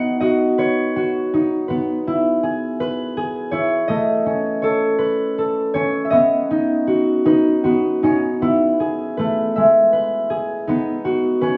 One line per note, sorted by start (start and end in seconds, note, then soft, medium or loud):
0.00 1.70 B3 medium
0.00 1.33 D#4 medium
0.00 0.21 F#4 medium
0.00 0.20 G#4 medium
0.00 0.35 B4 medium
0.00 0.58 C#5 medium
0.00 0.20 D#5 medium
0.00 1.43 F#5 medium
0.20 0.96 F#4 medium
0.20 1.99 D#5 medium
0.58 1.68 B4 medium
0.58 2.50 C#5 medium
0.96 3.40 F#4 medium
1.34 2.13 D#4 medium
1.68 4.81 B3 medium
1.68 2.80 B4 medium
2.07 3.52 E4 medium
2.43 3.17 G#4 medium
2.80 4.85 B4 medium
3.17 3.95 G#4 medium
3.51 3.94 E4 medium
3.51 4.62 C#5 medium
3.88 7.22 A3 medium
3.88 5.66 D#5 medium
4.26 5.75 C#4 medium
4.62 5.38 A4 medium
4.62 5.73 C#5 medium
4.98 7.03 B4 medium
5.38 7.58 A4 medium
5.74 8.03 C#4 medium
5.74 7.65 C#5 medium
6.05 6.16 E5 medium
6.10 7.64 B3 medium
6.10 7.89 D#5 medium
6.51 7.25 D#4 medium
6.87 7.63 F#4 medium
7.25 8.02 D#4 loud
7.25 9.17 B4 medium
7.64 8.41 B3 medium
7.64 10.07 F#4 medium
8.03 8.14 C#4 medium
8.03 8.48 D#4 medium
8.42 10.68 B3 medium
8.42 10.73 E4 medium
8.80 10.29 G#4 medium
9.17 9.63 A3 medium
9.17 9.92 B4 medium
9.56 10.72 G#3 medium
9.56 10.73 E5 medium
9.93 11.41 B4 medium
10.30 11.57 G#4 medium
10.67 11.57 B3 medium
10.67 11.57 D#4 medium
11.05 11.57 F#4 medium
11.41 11.57 C#4 medium
11.41 11.57 B4 medium